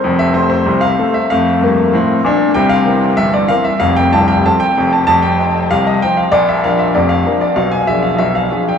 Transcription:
X:1
M:2/4
L:1/16
Q:1/4=96
K:F
V:1 name="Grand piano"
c e c c2 f2 e | f8 | g f3 e d f e | f g a g a g2 a |
a g3 f _e g f | d e f e d f2 d | f ^g e f e f2 =g |]
V:2 name="Grand piano" clef=bass
[F,,,F,,]2 [A,CA]2 [C,,C,]2 [A,CA]2 | [F,,A,]2 [G,,B,]2 [A,,C]2 [B,,D]2 | [C,,C,]2 [E,CB]2 [G,,,G,,]2 [E,CB]2 | [F,,,F,,]2 [C,,,C,,]2 [F,CA]2 [F,,,F,,]2 |
[F,,,F,,]2 [F,_Ec]2 [C,,C,]2 [F,Ec]2 | [B,,,B,,]2 [F,DB]2 [F,,,F,,]2 [F,DB]2 | [=B,,,=B,,]2 [F,D^G]2 [B,,,B,,]2 [F,DG]2 |]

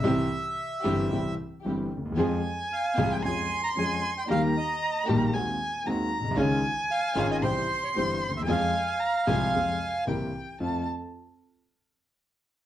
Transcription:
X:1
M:4/4
L:1/16
Q:1/4=114
K:Fm
V:1 name="Violin"
z16 | a8 c'8 | b8 a4 b4 | a8 c'8 |
a4 b2 a6 g4 | =a2 z12 z2 |]
V:2 name="Bandoneon"
=e8- e2 z6 | z4 f3 g a3 b a3 g | f2 e4 z8 z2 | z4 f3 e c3 d c3 =e |
f12 z4 | z16 |]
V:3 name="String section"
[C=EG]2 z4 [CEG]2 [CEG]2 z2 [CEG]2 z2 | [CFA]2 z4 [CFA]2 [F,DFA]2 z2 [F,DFA]2 z2 | [B,EG]2 z4 [B,EG]2 [E,C_GA]2 z2 [E,CGA]2 z2 | [DEF]2 z4 [DEF]2 [C=EG]2 z2 [CEG]2 z2 |
[CFA]2 z4 [CFA]2 [CFA]2 z2 [C=EB]2 z2 | [CF=A]2 z12 z2 |]
V:4 name="Grand piano" clef=bass
[C,,C,=E,G,CG]2 z4 [G,,,G,,E,G,CG]2 [C,,C,E,G,CG]2 z2 [G,,,G,,E,G,CG]2 z/2 =D,,/2 _E,,/2 =E,,/2 | [F,,F,A,CA]2 z4 [C,,C,F,A,CA]2 [F,,F,A,DA]2 z2 [F,,F,A,DA]2 z2 | [E,,E,G,B,G]2 z4 [B,,,B,,E,G,B,G]2 [E,,E,A,C_G]2 z2 [E,,E,A,CG]2 z/2 B,,,/2 =B,,,/2 C,,/2 | [D,,D,E,A,DF]2 z4 [A,,,A,,E,A,DF]2 [C,,C,=E,G,CG]2 z2 [G,,,G,,E,G,CG]2 z/2 =D,,/2 _E,,/2 =E,,/2 |
[F,,F,A,CA]2 z4 [C,,C,F,A,CA]2 [F,,F,A,CA]2 z2 [C,,C,=E,B,CG]2 z2 | [F,,=A,CF]2 z12 z2 |]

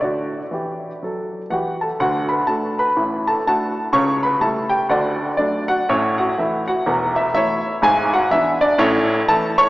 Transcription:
X:1
M:4/4
L:1/8
Q:"Swing" 1/4=123
K:D
V:1 name="Upright piano"
d6 [Ff] [Aa] | [Ff] [Bb] [Aa] [Bb]2 [Aa] [Afa]2 | [cc'] [Bb] [Aa] [Gg] [Fdf]2 [Dd] [Ff] | [Cc] [Ff] [Ee] [Ff]2 [Ee] [Ece]2 |
[^G^g] [Ff] [Ee] [Dd] [CAc]2 [Aa] [cac'] |]
V:2 name="Upright piano" clef=bass
[D,F]2 [E,G]2 [F,A]2 [E,G]2 | [D,,D,]2 [A,DF]2 [A,,,A,,]2 [A,DF]2 | [C,,C,]2 [G,A,E]2 [D,,D,]2 [F,A,]2 | [A,,,A,,]2 [E,A,]2 [E,,,E,,]2 [E,A,]2 |
[^G,,,^G,,]2 [E,B,D]2 [A,,,A,,]2 [E,A,E]2 |]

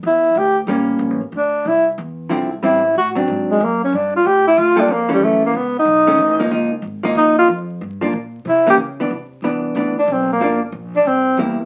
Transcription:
X:1
M:4/4
L:1/8
Q:"Swing" 1/4=185
K:Dm
V:1 name="Tenor saxophone"
E2 G z4 z | D2 E z4 z | E2 _G z2 _A, B, _D | D F G E F D B, G, |
A, B, =B, _E4- E | z4 _E F z2 | z4 E G z2 | [K:C] z4 z D C _B,- |
_B, z2 D C2 z2 |]
V:2 name="Hollow-body jazz guitar"
z4 [G,B,^C]3 z | z6 [D,F,CE] z | [G,CE] z2 [_G,CD]3 z2 | z4 z [G,B,FA] z [E,A,_D]- |
[E,A,_D]2 z3 [^D,A,^C] z [F,B,^D] | [F,B,_E] z2 [F,B,E]3 z2 | z [F,B,D] z3 [E,B,_D] z [E,=B,=D] | [K:C] z2 [E,B,D]2 [E,B,D] z3 |
[F,_B,D] z4 z [G,B,E] z |]
V:3 name="Upright bass" clef=bass
E,,2 D,,2 A,,,2 (3B,,, A,,, G,,, | D,,2 C,,2 E,,2 C,,2 | A,,,2 A,,2 _A,,2 _G,,2 | G,,2 A,,2 D,,2 F,,2 |
_G,, z _D,,2 =B,,,2 A,,,2 | _D,,2 _A,,,2 _E,,2 F,,2 | G,,2 B,,2 C,2 _D,2 | [K:C] C,2 C,,2 D,,2 B,,,2 |
G,,,2 _B,,,2 C,,2 E,,2 |]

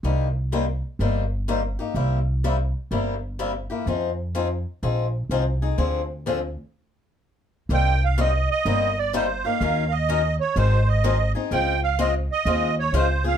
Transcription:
X:1
M:4/4
L:1/8
Q:"Swing" 1/4=125
K:Cm
V:1 name="Accordion"
z8 | z8 | z8 | z8 |
g f e e2 d c f- | f e2 _d c e2 z | g f e e2 _d c f |]
V:2 name="Steel-string acoustic guitar"
[C,G,B,EG] z [C,G,B,EG] z [C,G,B,EG] z [C,G,B,EG] [B,EG] | [C,G,B,=EG] z [C,G,B,EG] z [C,G,B,EG] z [C,G,B,EG] [B,EG] | [F,CEA] z [F,CEA] z [F,CEA] z [F,CEA] [CEA] | [D,F,CDA] z [D,F,CDA] z4 z |
[C,G,B,EG] z [C,G,B,EG] z [C,G,B,EG] z [C,G,B,EG] [B,EG] | [E,_G,_DEB] z [E,G,DEB] z [E,G,CEA] z [E,G,CEA] [CEA] | [_D,A,CFA] z [D,A,CFA] z [D,A,CFA] z [D,A,CFA] [CFA] |]
V:3 name="Upright bass" clef=bass
C,,4 G,,,4 | C,,4 G,,,4 | F,,4 B,,,2 C,,2 | D,,4 z4 |
C,,4 G,,,4 | E,,4 A,,,4 | _D,,4 E,,2 D,,2 |]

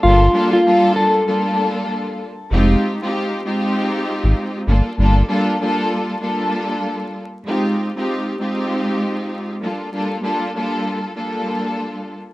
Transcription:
X:1
M:4/4
L:1/16
Q:"Swing 16ths" 1/4=97
K:Gphr
V:1 name="Clean electric guitar"
F3 F3 =A6- A z3 | z16 | z16 | z16 |
z16 |]
V:2 name="String section"
[G,B,DF=A]2 [G,B,DFA]2 [G,B,DFA]4 [G,B,DFA]6 z2 | [A,CEFG]3 [A,CEFG]3 [A,CEFG]6- [A,CEFG] z [G,B,DF=A]2 | [G,B,DF=A]2 [G,B,DFA]2 [G,B,DFA]4 [G,B,DFA]6 z2 | [A,CEFG]3 [A,CEFG]3 [A,CEFG]6- [A,CEFG] z [G,B,DF=A]2 |
[G,B,DF=A]2 [G,B,DFA]2 [G,B,DFA]4 [G,B,DFA]6 z2 |]
V:3 name="Sub bass" clef=bass
G,,,2 z12 z2 | F,,,2 z8 z A,,, z2 G,,, z | G,,,2 z12 z2 | z16 |
z16 |]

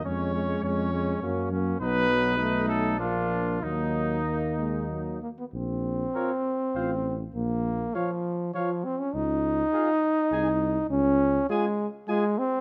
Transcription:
X:1
M:3/4
L:1/16
Q:1/4=101
K:Ebm
V:1 name="Trumpet"
d4 d6 z2 | =B6 =A2 F4 | E8- E2 z2 | [K:Bbm] z4 d4 f4 |
z4 f4 f4 | z4 f4 a4 | z4 a4 a4 |]
V:2 name="Trumpet"
D2 D2 D2 D2 D2 D2 | ^D4 D4 =D4 | E8- E2 z2 | [K:Bbm] z4 B4 c4 |
z4 d4 d4 | z4 A4 A4 | z4 A4 A4 |]
V:3 name="French horn"
A,2 A,2 A,2 A,2 B,2 B,2 | =B,4 =A,4 _B,4 | B,8- B,2 z2 | [K:Bbm] z4 F4 F4 |
z4 F4 F4 | z4 F4 E4 | z4 F4 F4 |]
V:4 name="Trombone" clef=bass
A,2 A,2 A,2 A,2 G,2 G,2 | ^F,2 F,2 =A,2 G,2 =F,4 | G,4 B,2 A,2 G,2 B, C | [K:Bbm] C12 |
B,4 F,4 F,2 C D | E12 | D4 A,3 z A,2 C2 |]
V:5 name="Tuba" clef=bass
F,,4 F,,4 G,,4 | =B,,,8 _B,,,4 | E,,8- E,,2 z2 | [K:Bbm] B,,,4 z4 =A,,,4 |
B,,,4 z8 | D,,4 z4 C,,4 | D,,4 z8 |]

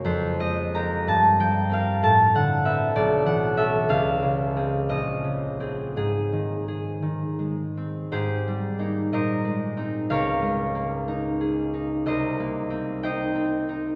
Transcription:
X:1
M:6/8
L:1/8
Q:3/8=61
K:Ab
V:1 name="Harp"
[Bcf] e b =a g f | =a _g =e =d ^f e | f3 e3 | A6 |
[GAc]3 [Bce]3 | [Bdf]6 | [Bce]3 [ceg]3 |]
V:2 name="Harp"
[F,,A,B,F] A, [B,G] G,, F, [CB] | =A,, =D, [C=B] =B,,, =E, [^C=A] | D,, D, [CA] B,,, D, [CA] | A,, E, A E, A, C |
A,, G, [B,E] B,, A, [CE] | D,, A, B, E A E | C,, B, C E C E |]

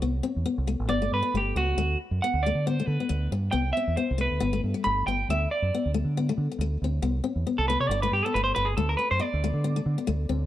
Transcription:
X:1
M:4/4
L:1/16
Q:"Swing 16ths" 1/4=137
K:Dmix
V:1 name="Clean electric guitar"
z8 d2 B2 G2 F2- | F2 z2 f2 d2 c2 B4 z2 | g2 e2 c2 B4 z2 b2 g2 | e2 d4 z8 z2 |
z4 z A B ^c d B G A B =c B ^G | A _B =B c d12 |]
V:2 name="Steel-string acoustic guitar"
B,2 C2 B,2 A,2 B, A,2 B, A,2 B,2 | A,2 z2 B,2 A,2 B, A,2 B, A,2 z2 | B,2 C2 B,2 A,2 B, A,2 G, A,2 B,2 | A,2 z2 B,2 A,2 B, A,2 B, A,2 C2 |
B,2 C2 B,2 A,2 B, A,2 B, A,2 B,2 | A,2 C2 B,2 A,2 B, A,2 B, A,2 C2 |]
V:3 name="Fingered electric bass" clef=bass
C,,2 z E,, z C,,2 A,,, G,,,2 G,, z G,,,2 ^C,,2 | D,,2 z F,, z D,,2 D,3 D, z D,,2 G,,2 | C,,2 z E,, z C,,2 D,, G,,,2 G,, z G,,,2 G,,,2 | D,,2 z F,, z D,,2 D,3 D, z D,,2 D,,2 |
C,,2 z E,, z C,,2 C, G,,,2 G,, z G,,,2 G,,,2 | D,,2 z F,, z D,,2 D,3 D, z D,,2 D,,2 |]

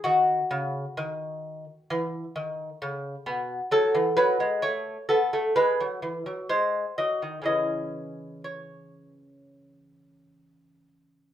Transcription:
X:1
M:4/4
L:1/16
Q:1/4=64
K:C#m
V:1 name="Lute"
F16 | A2 B2 c2 A2 B4 ^B2 d2 | d4 c8- c2 z2 |]
V:2 name="Lute" clef=bass
D,2 C,2 D,4 E,2 D,2 C,2 B,,2 | F, E, F, G, A,2 B, A, G, F, E, F, G,2 F, D, | [C,E,C]16 |]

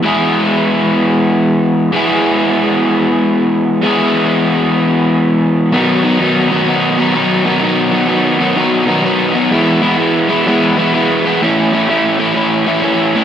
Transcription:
X:1
M:4/4
L:1/8
Q:"Swing" 1/4=127
K:E
V:1 name="Overdriven electric guitar" clef=bass
[E,G,B,EG]8 | [E,G,B,EG]8 | [E,G,B,EG]8 | [K:Bmix] [B,,D,F,B,D] [B,,D,F,B,D] [B,,D,F,B,D] [B,,D,F,B,D] [B,,D,F,B,D] [B,,D,F,B,D] [B,,D,F,B,D] [B,,D,F,B,D] |
[B,,D,F,B,D] [B,,D,F,B,D] [B,,D,F,B,D] [B,,D,F,B,D] [B,,D,F,B,D] [B,,D,F,B,D] [B,,D,F,B,D] [B,,D,F,B,D] | [E,G,B,E] [E,G,B,E] [E,G,B,E] [E,G,B,E] [E,G,B,E] [E,G,B,E] [E,G,B,E] [E,G,B,E] | [A,,E,A,CE] [A,,E,A,CE] [A,,E,A,CE] [A,,E,A,CE] [A,,E,A,CE] [A,,E,A,CE] [A,,E,A,CE] [A,,E,A,CE] |]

